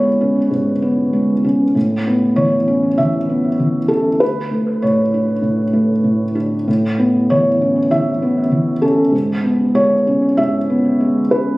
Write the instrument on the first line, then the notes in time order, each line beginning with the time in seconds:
felt piano
Already playing: G#2 G#3 B3 B4 C#5
0.21 C#4
0.51 G#2
0.82 B3
1.13 G#3
1.44 C#4
1.75 A2
2.07 B3
2.36 E3 C#5
2.68 C#4
2.98 E3 E5
3.29 B3
3.59 E3
3.88 C#4 A4
4.20 D2 B4
4.51 A3
4.82 A2 C#5
5.14 D4
5.42 A2
5.73 A3
6.04 A2
6.35 D4
6.68 A2
6.99 B3
7.30 E3 C#5
7.61 C#4
7.91 E3 E5
8.22 B3
8.52 E3
8.82 C#4 A4
9.12 G#2
9.44 B3
9.75 G#3 C#5
10.07 C#4
10.37 G#2 E5
10.70 B3
11.00 G#3
11.31 C#4 B4